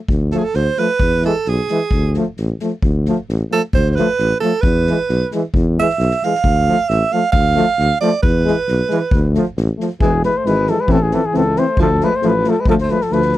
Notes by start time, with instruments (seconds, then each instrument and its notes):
0.08 tuba D2, kick
0.31 trombone F3, french horn A3, alto saxophone A4, snare
0.39 alto saxophone G#4
0.44 alto saxophone A4
0.53 tuba D2, alto saxophone C5, snare
0.76 trombone F3, french horn A3, alto saxophone B4, snare
1.00 tuba E2, kick
1.22 trombone E3, french horn G#3, alto saxophone A4, snare
1.45 tuba B1, alto saxophone G#4, snare
1.67 trombone E3, french horn G#3, snare
1.91 tuba D2, kick
2.13 trombone F3, french horn A3, snare
2.36 tuba A1, snare
2.59 trombone F3, french horn A3, snare
2.82 tuba D2, kick
3.05 trombone F3, french horn A3, snare
3.28 tuba A1, snare
3.51 trombone F3, french horn A3, alto saxophone A4, snare
3.73 tuba D2, alto saxophone C5, kick
3.90 alto saxophone C5
3.96 trombone F3, french horn A3, alto saxophone B4, snare
4.18 tuba A1, snare
4.40 trombone F3, french horn A3, alto saxophone A4, snare
4.61 tuba E2, alto saxophone B4, kick
4.86 trombone E3, french horn G#3, snare
5.08 tuba B1, snare
5.31 trombone E3, french horn G#3, snare
5.54 tuba E2, kick
5.78 trombone E3, french horn G#3, alto saxophone E5, snare
5.89 snare
5.99 tuba B1, snare
6.10 snare
6.22 trombone E3, french horn G#3, alto saxophone F5, snare
6.35 snare
6.44 tuba D2, kick
6.68 trombone F3, french horn A3
6.89 tuba A1, alto saxophone E5, snare
7.12 trombone F3, french horn A3, alto saxophone F5
7.32 tuba D2, alto saxophone F5, kick
7.55 trombone F3, french horn A3, snare
7.79 tuba D2, snare
8.01 trombone F3, french horn A3, alto saxophone D5, snare
8.23 tuba E2, alto saxophone B4, kick
8.45 trombone E3, french horn G#3, snare
8.68 tuba B1, snare
8.89 trombone E3, french horn G#3, snare
9.11 tuba D2, kick
9.33 trombone F3, french horn A3, snare
9.57 tuba A1, snare
9.77 trombone F3, french horn A3, snare
10.00 tuba E1, trombone E3, alto saxophone E3, french horn G#3, flugelhorn G#4, kick
10.22 trombone E3, french horn G#3, alto saxophone G#3, flugelhorn B4, snare
10.35 alto saxophone A3, flugelhorn C5
10.45 tuba G#1, trombone E3, french horn G#3, alto saxophone G#3, flugelhorn B4, snare
10.66 trombone E3, alto saxophone F3, french horn G#3, flugelhorn A4, snare
10.79 alto saxophone G#3, flugelhorn B4
10.87 tuba A1, alto saxophone E3, trombone E3, french horn C4, kick
10.92 flugelhorn A4
11.02 alto saxophone E3, flugelhorn G#4
11.11 trombone E3, alto saxophone F3, french horn C4, flugelhorn A4, snare
11.25 alto saxophone E3, flugelhorn G#4
11.33 tuba C#2, trombone E3, alto saxophone E3, french horn C4, snare
11.37 flugelhorn A4
11.56 trombone E3, alto saxophone A3, french horn C4, flugelhorn C5, snare
11.77 tuba D2, alto saxophone F3, trombone F3, french horn A3, kick
11.81 flugelhorn A4
12.00 trombone F3, alto saxophone G#3, french horn A3, snare
12.04 flugelhorn B4
12.15 alto saxophone A3, flugelhorn C5
12.21 tuba A1, trombone F3, french horn A3, snare
12.26 alto saxophone F3, flugelhorn B4
12.44 trombone F3, french horn A3, snare
12.49 alto saxophone F3, flugelhorn A4
12.60 alto saxophone G#3, flugelhorn B4
12.65 tuba D2, trombone F3, french horn A3, flugelhorn A4, kick
12.71 alto saxophone F3
12.78 flugelhorn C5, snare
12.83 alto saxophone A3
12.88 trombone F3, french horn A3, flugelhorn B4, snare
12.94 alto saxophone G#3
13.01 alto saxophone F3, flugelhorn A4, snare
13.11 tuba D2, trombone F3, alto saxophone F3, french horn A3, flugelhorn B4, snare
13.22 snare
13.32 snare